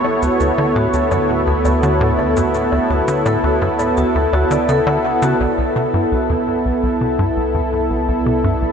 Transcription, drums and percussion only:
0.05 low woodblock soft
0.22 cabasa medium
0.40 cabasa soft
0.58 low woodblock soft
0.93 cabasa medium
1.11 cabasa soft
1.11 low woodblock soft
1.65 cabasa medium
1.65 low woodblock soft
1.83 cabasa soft
2.19 low woodblock soft
2.37 cabasa medium
2.54 cabasa soft
2.72 low woodblock soft
3.08 cabasa medium
3.26 cabasa soft
3.26 low woodblock soft
3.79 cabasa medium
3.79 low woodblock soft
3.97 cabasa soft
4.33 low woodblock soft
4.51 cabasa medium
4.69 cabasa soft
4.87 low woodblock soft
5.22 cabasa medium

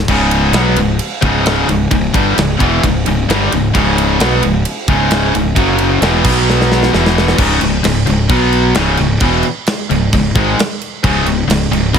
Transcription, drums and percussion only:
0.08 kick loud
0.08 crash loud
0.31 ride medium
0.53 snare loud
0.53 ride loud
0.76 ride medium
0.99 ride loud
1.22 kick loud
1.22 ride medium
1.46 snare loud
1.46 ride loud
1.69 ride medium
1.91 kick loud
1.91 ride loud
2.14 kick loud
2.14 ride medium
2.38 snare loud
2.38 ride loud
2.60 kick loud
2.60 ride medium
2.83 kick loud
2.83 ride loud
3.06 ride medium
3.30 snare loud
3.30 ride loud
3.52 ride medium
3.75 kick loud
3.75 ride loud
3.98 ride medium
4.20 snare loud
4.20 ride loud
4.43 ride medium
4.65 ride loud
4.88 kick loud
4.88 ride medium
5.11 snare loud
5.11 ride loud
5.35 ride medium
5.56 kick loud
5.56 ride loud
5.78 ride medium
6.02 snare loud
6.02 ride loud
6.25 kick loud
6.25 crash loud
6.50 snare medium
6.61 snare medium
6.72 snare medium
6.83 snare medium
6.94 snare medium
7.06 snare medium
7.18 snare loud
7.28 snare medium
7.38 kick loud
7.38 crash loud
7.38 crash medium
7.61 crash medium
7.84 snare loud
7.84 crash medium
8.07 crash medium
8.29 kick loud
8.29 crash medium
8.53 crash medium
8.75 snare loud
8.75 crash medium
8.97 crash medium
9.20 kick loud
9.20 crash medium
9.43 crash medium
9.67 snare loud
9.67 crash medium
9.91 crash medium
10.13 kick loud
10.13 crash medium
10.36 kick loud
10.36 crash medium
10.59 snare loud
10.59 crash medium
10.82 crash medium
11.04 kick loud
11.04 crash medium
11.26 crash medium
11.50 snare loud
11.50 crash medium
11.73 crash medium
11.94 kick loud
11.94 crash medium

